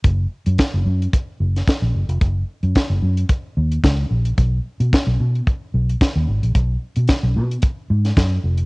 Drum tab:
HH |x--xx--xx--xx--x|x--xx--xx--xx--x|x--xx--xx--xx--x|x--xx--xx--xx--x|
SD |----o------oo---|----o-------o---|----o-------o---|----o------oo---|
BD |o---o---o---o---|o---o---o---o---|o---o---o---o---|o---o---o---o---|